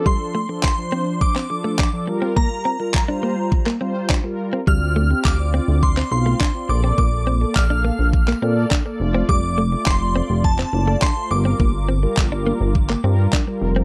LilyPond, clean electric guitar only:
\new Staff \with { instrumentName = "Clean electric guitar" } { \time 4/4 \key g \dorian \tempo 4 = 104 g16 r16 a16 r8. c'16 r8 c'16 r16 a16 d'16 r8 c'16 | bes16 r16 c'16 r8 d'16 bes16 r8 bes16 c'16 r16 d'16 r8 c'16 | g16 r16 a16 r8. c'16 r8 c'16 r16 a16 d'16 r8 c'16 | bes16 r16 c'16 r8 d'16 bes16 r8 bes16 c'16 r16 d'16 r8 c'16 |
g16 r16 a16 r8. c'16 r8 c'16 r16 a16 d'16 r8 c'16 | bes16 r16 c'16 r8 d'16 bes16 r8 bes16 c'16 r16 d'16 r8 c'16 | }